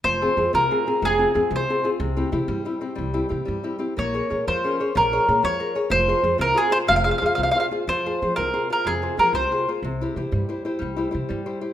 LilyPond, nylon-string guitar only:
\new Staff \with { instrumentName = "Nylon-string guitar" } { \time 6/8 \key f \minor \tempo 4. = 123 f8 <c' f' aes'>8 <c' f' aes'>8 c8 <c' f' aes'>8 <c' f' aes'>8 | c8 <c' f' aes'>8 <c' f' aes'>8 c8 <c' f' aes'>8 <c' f' aes'>8 | c8 <c' e' g'>8 <c' e' g'>8 g8 <c' e' g'>8 <c' e' g'>8 | g8 <c' e' g'>8 <c' e' g'>8 g8 <c' e' g'>8 <c' e' g'>8 |
bes8 <aes' bes' des''>8 <aes' bes' des''>8 f8 <des' aes' bes'>8 <aes' bes' des''>8 | f8 <aes' bes' des''>8 <aes' bes' des''>8 f8 <aes' bes' des''>8 <aes' bes' des''>8 | f8 <f' aes' c''>8 <f' aes' c''>8 c8 <f' aes' c''>8 <f' aes' c''>8 | c8 <f' aes' c''>8 <f' aes' c''>8 c8 <f' aes' c''>8 <f' aes' c''>8 |
f8 <f' aes' c''>8 <f' aes' c''>8 c8 <f' aes' c''>8 <f' aes' c''>8 | c8 <f' aes' c''>8 <f' aes' c''>8 c8 <f' aes' c''>8 <f' aes' c''>8 | c8 <e' g' c''>8 <e' g' c''>8 g8 <e' g' c''>8 <e' g' c''>8 | g8 <e' g' c''>8 <e' g' c''>8 g8 <e' g' c''>8 <e' g' c''>8 | }